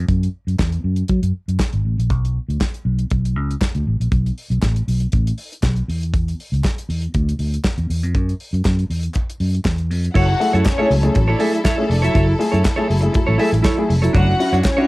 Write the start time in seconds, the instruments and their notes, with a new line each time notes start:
0.08 fingered electric bass F#2, kick, closed hi-hat
0.23 closed hi-hat
0.47 fingered electric bass F#2, closed hi-hat
0.59 fingered electric bass E2, kick, snare, clap
0.72 closed hi-hat
0.84 fingered electric bass F#2
0.96 closed hi-hat
1.08 fingered electric bass F#3, kick, closed hi-hat
1.23 fingered electric bass F#2, closed hi-hat
1.48 fingered electric bass F#2, closed hi-hat
1.59 kick, snare, clap
1.73 fingered electric bass G#1, closed hi-hat
1.85 fingered electric bass A1
1.98 fingered electric bass A#1, closed hi-hat
2.10 fingered electric bass B1, kick, closed hi-hat
2.25 closed hi-hat
2.49 fingered electric bass D2, closed hi-hat
2.61 kick, snare, clap
2.74 closed hi-hat
2.85 fingered electric bass B1
2.99 closed hi-hat
3.10 fingered electric bass B1, kick, closed hi-hat
3.25 closed hi-hat
3.36 fingered electric bass C#2
3.51 closed hi-hat
3.61 kick, snare, clap
3.75 fingered electric bass D2, closed hi-hat
3.87 fingered electric bass A1
4.00 fingered electric bass A#1, closed hi-hat
4.12 fingered electric bass B1, kick, closed hi-hat
4.26 closed hi-hat
4.38 open hi-hat
4.50 fingered electric bass B1, closed hi-hat
4.63 fingered electric bass A1, kick, snare, clap
4.76 closed hi-hat
4.88 fingered electric bass B1, open hi-hat
5.00 closed hi-hat
5.12 fingered electric bass A1, kick, closed hi-hat
5.27 closed hi-hat
5.38 open hi-hat
5.53 closed hi-hat
5.63 fingered electric bass B1, kick, snare, clap
5.76 closed hi-hat
5.89 fingered electric bass E2, open hi-hat
6.03 closed hi-hat
6.14 kick, closed hi-hat
6.28 closed hi-hat
6.40 open hi-hat
6.52 fingered electric bass C#2, closed hi-hat
6.64 kick, snare, clap
6.78 closed hi-hat
6.89 fingered electric bass E2, open hi-hat
7.02 closed hi-hat
7.14 fingered electric bass D2, kick, closed hi-hat
7.29 closed hi-hat
7.39 fingered electric bass D2, open hi-hat
7.54 closed hi-hat
7.64 kick, snare, clap
7.78 fingered electric bass E2, closed hi-hat
7.90 fingered electric bass E2, open hi-hat
8.03 fingered electric bass F2, closed hi-hat
8.15 fingered electric bass F#2, kick, closed hi-hat
8.29 closed hi-hat
8.40 open hi-hat
8.53 fingered electric bass F#2, closed hi-hat
8.65 fingered electric bass F#2, kick, snare, clap
8.79 closed hi-hat
8.90 fingered electric bass E2, open hi-hat
9.03 closed hi-hat
9.14 kick, clap, closed hi-hat
9.30 closed hi-hat
9.40 fingered electric bass F#2, open hi-hat
9.55 closed hi-hat
9.65 fingered electric bass E2, kick, snare, clap
9.78 closed hi-hat
9.90 fingered electric bass F2, open hi-hat
10.04 closed hi-hat
10.14 fingered electric bass F#1, grand piano F#3, string section F#3 E4 F#4 A4 F#5, clean electric guitar E4 A4 C#5, kick, crash
10.28 grand piano E4 G#4, muted clean electric guitar stroke
10.40 grand piano A3 E4 G#4, muted clean electric guitar stroke, open hi-hat
10.53 fingered electric bass F#2, clean electric guitar E4 A4 C#5, closed hi-hat
10.65 string section C#4 C#5, muted clean electric guitar stroke, kick, snare, clap, closed hi-hat
10.78 grand piano A3 E4 G#4, clean electric guitar E4 A4 C#5
10.90 fingered electric bass C#2, grand piano F#3, muted clean electric guitar stroke, open hi-hat
11.03 grand piano A3 E4 G#4, muted clean electric guitar stroke, closed hi-hat
11.14 fingered electric bass A1, grand piano F#3, muted clean electric guitar stroke, kick, closed hi-hat
11.28 string section D4 D5, clean electric guitar E4 A4 C#5
11.39 grand piano A3 E4 G#4, clean electric guitar E4 A4 E5, open hi-hat
11.53 string section E4 E5, grand piano E4 G#4, muted clean electric guitar stroke, closed hi-hat
11.64 clean electric guitar E4 A4 C#5, string section E4 E5, kick, snare, clap, closed hi-hat
11.77 grand piano A3 E4 G#4, string section C#4 C#5, muted clean electric guitar stroke
11.89 fingered electric bass F1, string section D4 D5, muted clean electric guitar stroke, open hi-hat
12.02 grand piano F#3, string section E4 E5, clean electric guitar E4 A4 C#5, closed hi-hat
12.14 fingered electric bass F#1, grand piano F#3, clean electric guitar E4 A4 C#5, kick, closed hi-hat
12.27 grand piano E4 G#4, muted clean electric guitar stroke
12.39 grand piano A3 E4 G#4, muted clean electric guitar stroke, open hi-hat
12.52 fingered electric bass F#2, clean electric guitar E4 A4 C#5, closed hi-hat
12.64 muted clean electric guitar stroke, kick, snare, clap, closed hi-hat
12.76 grand piano A3 E4 G#4, clean electric guitar E4 A4 C#5
12.88 fingered electric bass F#1, grand piano F#3, muted clean electric guitar stroke, open hi-hat
13.01 grand piano A3 E4 G#4, muted clean electric guitar stroke, closed hi-hat
13.13 grand piano F#3, muted clean electric guitar stroke, kick, closed hi-hat
13.27 fingered electric bass A1, clean electric guitar E4 A4 C#5
13.38 grand piano A3 E4 G#4, clean electric guitar E4 A4 E5, open hi-hat
13.52 fingered electric bass A1, grand piano E4 G#4, muted clean electric guitar stroke, closed hi-hat
13.63 clean electric guitar E4 A4 C#5, kick, snare, clap, closed hi-hat
13.76 grand piano A3 E4 G#4, muted clean electric guitar stroke
13.89 fingered electric bass F1, muted clean electric guitar stroke, open hi-hat
14.02 grand piano F#3, clean electric guitar E4 A4 C#5, closed hi-hat
14.13 fingered electric bass F#1, grand piano D3 A3, string section C#4 F#4 F#5, clean electric guitar D4 F#4 C#5, kick, closed hi-hat
14.28 grand piano E4 F#4, muted clean electric guitar stroke
14.39 grand piano C#4 E4 F#4, muted clean electric guitar stroke, open hi-hat
14.53 fingered electric bass F#2, clean electric guitar D4 F#4 C#5, closed hi-hat
14.64 string section C#4 C#5, muted clean electric guitar stroke, kick, snare, clap, closed hi-hat
14.77 grand piano C#4 E4 F#4, clean electric guitar D4 F#4 C#5